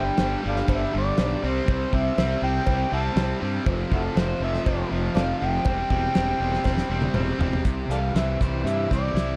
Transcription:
Already playing: G2 D3 G3 G5
0.17 G1 G2 D3 G3, snare, cowbell, crash
0.44 G1 G2 D3 G3
0.48 A4 D5 F5
0.56 snare
0.68 G1 G2 D3 G3, kick, cowbell, crash
0.75 E5
0.93 G1 G2 D3 G3
0.98 D5
1.17 B1 G2 D3 G3, snare, cowbell, crash
1.43 C2 C3 G3 C4
1.48 C5
1.68 C2 C3 G3 C4, kick, cowbell, crash
1.93 C2 C3 G3 C4 E5, kick
2.18 C2 C3 G3 C4, snare, cowbell, crash
2.42 C2 C3 G3 C4 G5
2.66 C2 C3 G3 C4, kick, cowbell, crash
2.91 C2 C3 G3 C4 E5 F#5 A5
3.16 C2 C3 G3 C4, snare, cowbell, crash
3.41 G2 C3 G3 C4
3.66 F1 F2 C3 F3, kick, cowbell, crash
3.90 F1 F2 C3 F3, kick
3.94 E4 F#4 A4
4.16 F1 F2 C3 F3 C5, snare, cowbell, crash
4.40 F1 F2 C3 F3 E5
4.54 snare
4.65 F1 F2 C3 F3, kick, cowbell, crash
4.90 F1 F2 C3 F3
5.15 F1 F2 C3 F3 A4 D5 F5, snare, cowbell, crash
5.38 F1 F2 C3 F3 G5
5.65 E1 C3 G3 C4, kick, cowbell, crash
5.90 E1 C3 G3 C4, kick
6.14 E1 C3 G3 C4, snare, cowbell, crash
6.39 E1 C3 G3 C4
6.53 snare
6.64 E1 C3 G3 C4, kick, snare, cowbell
6.77 snare
6.89 E1 C3 G3 C4
7.02 high tom
7.14 E1 C3 G3 C4, mid tom, cowbell
7.39 E1 C3 G3 C4, floor tom
7.53 floor tom
7.64 C2 C3, kick, closed hi-hat
7.89 C2 E3 G3 A4 D5 F5, closed hi-hat
8.14 C2 E3 C4 E5, snare, closed hi-hat
8.40 C2 E3 G3 C5, kick, closed hi-hat
8.64 G2 E3 G3 E5, closed hi-hat
8.90 C2 C4 D5, kick, closed hi-hat
9.14 C2 E4, snare, closed hi-hat

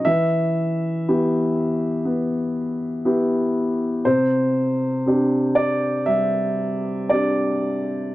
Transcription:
0.05 E3 E5
1.09 B3 E4 G4
2.05 B3
3.05 B3 E4 G4
4.05 C3 C5
5.06 C4 D4 G4
5.55 D5
6.06 G3 E5
7.09 C4 D4 G4 D5

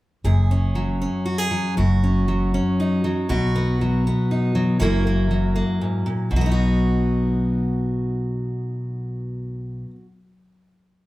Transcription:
0.24 F#1 F#2 G#4
0.51 C#4
0.75 F#3
1.02 C#4
1.26 F#4
1.38 G#4
1.51 F#3
1.77 F#1 F#2 F#4
2.03 C#4
2.28 F#3
2.54 C#4
2.80 D#4
3.04 F#3
3.29 B1 B2 F#4
3.56 B3
3.81 F#3
4.07 B3
4.31 D#4
4.55 F#3
4.79 F#1 F#2 F#3 A#3 E4 A#4
5.07 A#3
5.31 F#3
5.55 A#3
5.81 G#2
6.06 A#2
6.31 B1 B2
6.36 F#3
6.41 B3
6.46 D#4
6.51 F#4

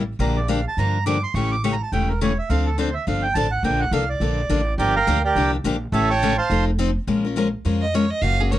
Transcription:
Already playing: A1
0.19 A#1 D3 F3 A#3 D4 G4 A#5
0.37 D5
0.48 D3 F3 A#3 D4 G4 F5
0.68 A5
0.77 G2 D3 F3 A#3 D4 G4 A#5
1.06 D3 F3 A#3 D4 G4 D6
1.23 C6
1.34 A1 C#3 E3 A3 C#4 G4 C#6
1.52 D6
1.64 C#3 E3 A3 C#4 G4 C#6
1.73 A#5
1.83 A5
1.92 E1 C#3 E3 A3 C#4 G4 G5
2.09 A#4
2.21 C#3 E3 A3 C#4 G4 C#5
2.39 E5
2.50 D2 D3 F3 C4 D4 A4 F5
2.66 A4
2.78 D3 F3 C4 D4 A4 C5
2.94 E5
3.07 G1 D3 F3 C4 D4 A4 F5
3.22 G5
3.34 A1 D3 F3 C4 D4 A4 A5
3.51 F#5
3.63 A#1 D3 F3 A#3 D4 A4 G5
3.80 F#5
3.91 C2 D3 F3 A#3 D4 A4 F5
4.09 D5
4.20 A#1 D3 F3 A#3 D4 A4
4.49 A1 D3 F3 A#3 D4 A4
4.78 G1 D3 F3 A#3 D4 G4 A#4 D5 G5
4.96 A#4 F5 G5 A#5
5.07 D2 D3 F3 A#3 D4 G4
5.25 G4 A#4 D5 G5
5.35 C2 D3 F3 A#3 D4 G4
5.64 A#1 D3 F3 A#3 D4 G4
5.92 A1 C#3 E3 A3 C#4 G4 A4 C#5 E5 A5
6.10 C#5 G5 A5 C#6
6.23 C#3 E3 A3 C#4 G4
6.38 C5 F5 A5 C6
6.50 F1 F3 C4 D#4 A4
6.79 F3 C4 D#4 A4
7.07 A#1 F3 G#3 C#4 F4 A#4
7.25 C#4 F4 A#4
7.36 F3 G#3 C#4 F4 A#4
7.65 F2 F3 G#3 C#4 F4 A#4
7.82 D#5
7.94 F3 G#3 C#4 F4 A#4 C#5
8.10 D#5
8.21 F#1 C#3 F3 A#3 C#4 F#4 F5
8.40 A#3 C#4 F#4 G#4
8.51 C#3 F3 A#3 C#4 F#4 C#5

